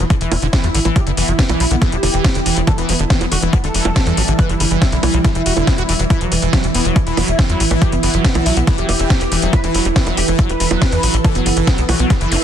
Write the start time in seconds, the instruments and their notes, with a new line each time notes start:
Already playing: ambient pad E3 E4 B4 E5, sub drop
0.10 acid bass D3, analog synth lead E3, kick, closed hi-hat
0.21 analog synth bass E1, acid bass E3, analog synth lead E4, closed hi-hat
0.32 analog synth bass E1, acid bass F#3, open hi-hat, high bongo
0.42 analog synth bass E1, acid bass D3, closed hi-hat
0.53 acid bass E3, kick, snare, closed hi-hat
0.64 analog synth bass E2, acid bass F#3, closed hi-hat
0.74 analog synth bass A1, acid bass D3, open hi-hat
0.85 analog synth bass A1, acid bass E3, closed hi-hat, high bongo
0.96 acid bass F#3, analog synth lead G4, kick, closed hi-hat
1.07 analog synth bass F#1, acid bass D3, analog synth lead B3, closed hi-hat
1.17 analog synth bass F#1, acid bass E3, analog synth lead B3, open hi-hat
1.28 analog synth bass F#1, acid bass F#3, closed hi-hat
1.39 acid bass D3, analog synth lead B3, kick, snare, closed hi-hat
1.49 analog synth bass B1, acid bass E3, analog synth lead B3, closed hi-hat, high bongo
1.60 analog synth bass B1, acid bass F#3, analog synth lead E4, open hi-hat
1.71 analog synth bass B1, acid bass D3, analog synth lead B3, closed hi-hat
1.82 acid bass E3, analog synth lead B3, kick, snare, closed hi-hat
1.92 analog synth bass E1, acid bass F#3, analog synth lead G4, closed hi-hat
2.03 analog synth bass E1, acid bass D3, open hi-hat, high bongo
2.14 analog synth bass E1, acid bass E3, closed hi-hat
2.24 acid bass F#3, kick, snare, closed hi-hat
2.35 analog synth bass E1, acid bass D3, closed hi-hat
2.46 analog synth bass E1, acid bass E3, open hi-hat
2.57 analog synth bass E1, acid bass F#3, closed hi-hat
2.67 acid bass D3, ambient pad G3, analog synth lead A4, kick, closed hi-hat, high bongo
2.78 analog synth bass E1, acid bass E3, analog synth lead B3, closed hi-hat
2.89 analog synth bass E1, acid bass F#3, analog synth lead B3, open hi-hat
2.99 analog synth bass E1, acid bass D3, closed hi-hat
3.10 acid bass E3, analog synth lead B3, kick, snare, closed hi-hat
3.21 analog synth bass E1, acid bass F#3, analog synth lead B3, closed hi-hat, high bongo
3.32 analog synth bass E1, acid bass D3, analog synth lead F#4, open hi-hat
3.42 analog synth bass E1, acid bass E3, analog synth lead B3, closed hi-hat
3.53 acid bass F#3, analog synth lead B3, kick, closed hi-hat
3.64 analog synth bass E1, acid bass D3, analog synth lead A4, closed hi-hat
3.74 analog synth bass E1, acid bass E3, open hi-hat
3.85 analog synth bass E1, acid bass F#3, high bongo
3.96 acid bass D3, kick, snare, closed hi-hat
4.07 analog synth bass E2, acid bass E3, closed hi-hat
4.17 analog synth bass A1, acid bass F#3, open hi-hat
4.28 analog synth bass A1, acid bass D3, closed hi-hat
4.39 acid bass E3, analog synth lead B4, kick, closed hi-hat, high bongo
4.49 analog synth bass F#1, acid bass F#3, analog synth lead E4, closed hi-hat
4.60 analog synth bass F#1, acid bass D3, analog synth lead E4, open hi-hat
4.71 analog synth bass F#1, acid bass E3, closed hi-hat
4.82 acid bass F#3, analog synth lead E4, kick, snare, closed hi-hat
4.92 analog synth bass B1, acid bass D3, analog synth lead E4, closed hi-hat
5.03 analog synth bass B1, acid bass E3, analog synth lead E4, open hi-hat, high bongo
5.14 analog synth bass B1, acid bass F#3, analog synth lead E4, closed hi-hat
5.24 acid bass D3, analog synth lead E4, kick, snare, closed hi-hat
5.35 analog synth bass E1, acid bass E3, analog synth lead E4, closed hi-hat
5.46 analog synth bass E1, acid bass F#4, open hi-hat
5.57 analog synth bass E1, acid bass D3, closed hi-hat, high bongo
5.67 acid bass F#3, kick, snare, closed hi-hat
5.78 analog synth bass E1, acid bass F#4, closed hi-hat
5.89 analog synth bass E1, acid bass E3, open hi-hat
5.99 analog synth bass E1, acid bass F#3, closed hi-hat
6.10 acid bass E3, analog synth lead E4, ambient pad E4, kick, closed hi-hat
6.21 analog synth bass E1, analog synth lead E3, acid bass F#3, closed hi-hat
6.32 analog synth bass E1, analog synth lead E3, acid bass G3, open hi-hat
6.42 analog synth bass E1, acid bass E3, closed hi-hat
6.53 analog synth lead E3, acid bass F#3, kick, snare, closed hi-hat, high bongo
6.64 analog synth bass E1, analog synth lead E3, acid bass G3, closed hi-hat
6.74 analog synth bass E1, acid bass E3, analog synth lead B3, open hi-hat
6.85 analog synth bass E1, analog synth lead E3, acid bass F#3, closed hi-hat
6.96 analog synth lead E3, acid bass G3, kick, closed hi-hat
7.07 analog synth bass E1, acid bass E3, analog synth lead E4, closed hi-hat
7.17 analog synth bass E1, acid bass F#3, open hi-hat, high bongo
7.28 analog synth bass E1, acid bass G3, closed hi-hat
7.39 acid bass E3, kick, snare, closed hi-hat
7.49 analog synth bass E2, acid bass F#3, closed hi-hat
7.60 analog synth bass A1, acid bass G3, open hi-hat
7.71 analog synth bass A1, acid bass E3, closed hi-hat, high bongo
7.82 acid bass F#3, analog synth lead G4, kick, closed hi-hat
7.92 analog synth bass F#1, acid bass G3, analog synth lead B3, closed hi-hat
8.03 analog synth bass F#1, acid bass E3, analog synth lead B3, open hi-hat
8.14 analog synth bass F#1, acid bass F#3, closed hi-hat
8.24 acid bass G3, analog synth lead B3, kick, snare, closed hi-hat
8.35 analog synth bass B1, acid bass E3, analog synth lead B3, closed hi-hat, high bongo
8.46 analog synth bass B1, acid bass F#3, analog synth lead E4, open hi-hat
8.57 analog synth bass B1, acid bass G3, analog synth lead B3, closed hi-hat
8.67 acid bass E3, analog synth lead B3, kick, snare, closed hi-hat
8.78 analog synth bass E1, acid bass F#3, analog synth lead G4, closed hi-hat
8.89 analog synth bass E1, acid bass G3, open hi-hat, high bongo
8.99 analog synth bass E1, acid bass E3, closed hi-hat
9.10 acid bass F#3, kick, snare, closed hi-hat
9.21 analog synth bass E1, acid bass G3, closed hi-hat
9.32 analog synth bass E1, acid bass E3, open hi-hat
9.42 analog synth bass E1, acid bass F#3, closed hi-hat
9.53 acid bass G3, ambient pad A4, analog synth lead B4, kick, closed hi-hat, high bongo
9.64 analog synth bass E1, acid bass E3, analog synth lead E4, closed hi-hat
9.74 analog synth bass E1, acid bass F#3, analog synth lead E4, open hi-hat
9.85 analog synth bass E1, acid bass G3, closed hi-hat
9.96 acid bass E3, analog synth lead E4, kick, snare, closed hi-hat
10.07 analog synth bass E1, acid bass F#3, analog synth lead E4, closed hi-hat, high bongo
10.17 analog synth bass E1, acid bass G3, analog synth lead G4, open hi-hat
10.28 analog synth bass E1, acid bass E3, analog synth lead E4, closed hi-hat
10.39 acid bass F#3, analog synth lead E4, kick, closed hi-hat
10.49 analog synth bass E1, acid bass G3, analog synth lead B4, closed hi-hat
10.60 analog synth bass E1, acid bass E3, open hi-hat
10.71 analog synth bass E1, acid bass F#3, closed hi-hat, high bongo
10.82 acid bass G3, kick, snare, closed hi-hat
10.92 analog synth bass E2, acid bass E3, closed hi-hat
11.03 analog synth bass A1, acid bass F#3, open hi-hat
11.14 analog synth bass A1, acid bass G3, closed hi-hat
11.24 acid bass E3, analog synth lead A4, kick, closed hi-hat, high bongo
11.35 analog synth bass F#1, acid bass F#3, analog synth lead B3, closed hi-hat
11.46 analog synth bass F#1, acid bass G3, analog synth lead B3, open hi-hat
11.57 analog synth bass F#1, acid bass E3, closed hi-hat
11.67 acid bass F#3, analog synth lead B3, kick, snare, closed hi-hat
11.78 analog synth bass B1, acid bass G3, analog synth lead B3, closed hi-hat
11.89 analog synth bass B1, acid bass E3, analog synth lead F#4, open hi-hat, high bongo
11.99 analog synth bass B1, acid bass F#3, analog synth lead B3, closed hi-hat
12.10 acid bass G3, analog synth lead B3, kick, snare, closed hi-hat, reverse cymbal
12.21 analog synth bass F#1, acid bass E3, analog synth lead E4, closed hi-hat
12.32 analog synth bass F#1, acid bass E4, open hi-hat, zap